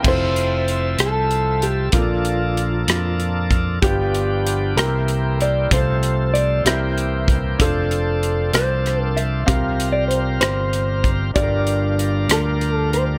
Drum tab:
CC |x-----|------|------|------|
HH |-xxxxx|xxxxxx|xxxxxx|xxxxxx|
SD |---r--|---r--|---r--|---r--|
BD |o-----|o----o|o-----|o----o|

CC |------|------|------|
HH |xxxxxx|xxxxxx|xxxxxx|
SD |---rr-|---r--|---r--|
BD |o-----|o----o|o-----|